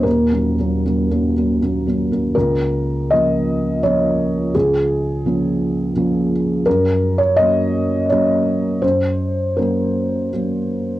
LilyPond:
<<
  \new Staff \with { instrumentName = "Felt piano" } { \time 3/4 \key des \major \tempo 4 = 82 bes'2 r4 | bes'4 ees''4 des''4 | aes'2~ aes'8 r8 | bes'8. des''16 ees''4 des''4 |
c''4 bes'4 r4 | }
  \new Staff \with { instrumentName = "Felt piano" } { \time 3/4 \key des \major \tuplet 3/2 { <ees,, ees,>8 <ges bes des'>8 <ges bes des'>8 <ges bes des'>8 <ges bes des'>8 <ges bes des'>8 <ges bes des'>8 <ges bes des'>8 <ges bes des'>8 } | des,4 <f bes des'>4 <f bes des'>4 | des,4 <f bes des'>4 <f bes des'>4 | ges,4 <ges bes des'>4 <ges bes des'>4 |
ges,4 <ges bes des'>4 <ges bes des'>4 | }
>>